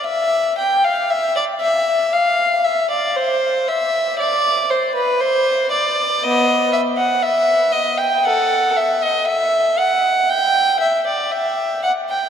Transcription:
\new Staff \with { instrumentName = "Violin" } { \time 4/4 \key e \phrygian \tempo 4 = 59 e''8 g''16 f''16 e''16 d''16 e''8 f''8 e''16 d''16 c''8 e''8 | \key e \minor d''8 c''16 b'16 c''8 d''8 <b dis''>8 e''16 fis''16 e''8 dis''16 g''16 | <a' fis''>8 e''16 dis''16 e''8 fis''8 g''8 e''16 d''16 e''8 fis''16 g''16 | }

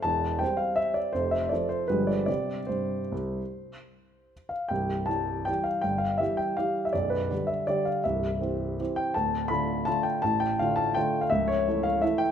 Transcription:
<<
  \new Staff \with { instrumentName = "Grand piano" } { \time 3/4 \key c \major \tempo 4 = 162 a''4 g''8 f''8 e''8 d''8 | c''8 e''8 d''8 c''8 b'8 d''8 | d''4 c''2~ | c''2~ c''8 f''8 |
g''4 a''4 g''8 f''8 | g''8 f''8 e''8 g''8 f''8. e''16 | d''8 b'4 e''8 d''8 f''8 | e''2~ e''8 g''8 |
a''4 b''4 a''8 g''8 | a''8 g''8 f''8 a''8 g''8. f''16 | e''8 cis''4 f''8 e''8 g''8 | }
  \new Staff \with { instrumentName = "Grand piano" } { \clef bass \time 3/4 \key c \major <e,, e,>4 <g c' c''>2 | <f,, f,>4 <f c' a'>4 <g,, g, f aes g'>4 | <c g g'>4 g,4 c,4 | r2. |
<c,, c,>4 <e g g'>4 <e g g'>4 | <g,, g,>4 <e g g'>4 <e g g'>4 | <b,,, b,,>4 <d g g'>4 <d g g'>4 | <c,, c,>4 <e c' g'>4 <e c' g'>4 |
<d,, d,>4 <d a f'>4 <d a f'>4 | <a,, a,>4 <d a f'>4 <d a f'>4 | <cis,, cis,>4 <e a e'>4 <e a e'>4 | }
>>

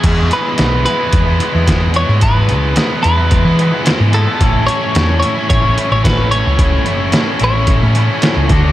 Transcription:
<<
  \new Staff \with { instrumentName = "Clean electric guitar" } { \time 4/4 \key a \major \tempo 4 = 110 gis'8 b'4 b'2 cis''8 | b'4. b'4. r8 a'8~ | a'8 cis''4 cis''8 cis''8. cis''16 b'8 cis''8~ | cis''4. cis''2 r8 | }
  \new Staff \with { instrumentName = "Overdriven electric guitar" } { \time 4/4 \key a \major <e gis b e'>8 <e gis b e'>8 <e gis b e'>8 <e gis b e'>16 <gis b e'>8 <gis b e'>16 <e gis b e'>16 <gis b e'>16 <e gis b e'>8 <e gis b e'>16 <gis b e'>16 | <e gis b e'>8 <e gis b e'>8 <e gis b e'>8 <e gis b e'>16 <gis b e'>8 <gis b e'>16 <e gis b e'>16 <gis b e'>16 <e gis b e'>8 <e gis b e'>16 <gis b e'>16 | <a, e a cis' e'>8 <e a cis' e'>8 <a, e a cis' e'>8 <e a cis' e'>16 <a cis' e'>8 <a cis' e'>16 <e a cis' e'>16 <a cis' e'>16 <a, e a cis' e'>8 <e a cis' e'>16 <a cis' e'>16 | <a, e a cis' e'>8 <e a cis' e'>8 <a, e a cis' e'>8 <e a cis' e'>16 <a cis' e'>8 <a cis' e'>16 <e a cis' e'>16 <a cis' e'>16 <a, e a cis' e'>8 <d a d' fis'>16 <a d' fis'>16 | }
  \new Staff \with { instrumentName = "Fingered electric bass" } { \clef bass \time 4/4 \key a \major e,8 r8 b,,8 r8 e,8 r16 e,4 gis,16~ | gis,8 cis,8 r8 e,8. e8 r8 gis,8 r16 | a,,8 r8 e,8 r8 a,,8 r16 a,,4 cis,16~ | cis,8 fis,,8 r8 a,,8. a,8 r8 cis,16 d,8 | }
  \new DrumStaff \with { instrumentName = "Drums" } \drummode { \time 4/4 <cymc hh bd>8 hh8 <hh sn>8 hh8 <hh bd>8 hh8 <hh bd sn>8 hh8 | <hh bd>8 hh8 <hh sn>8 hh8 <hh bd>8 hh8 <hh sn>8 hh8 | <hh bd>8 hh8 <hh sn>8 hh8 <hh bd>8 hh8 <hh bd sn>8 hh8 | <hh bd>8 hh8 <hh sn>8 hh8 <hh bd>8 hh8 <hh sn>8 <hh bd>8 | }
>>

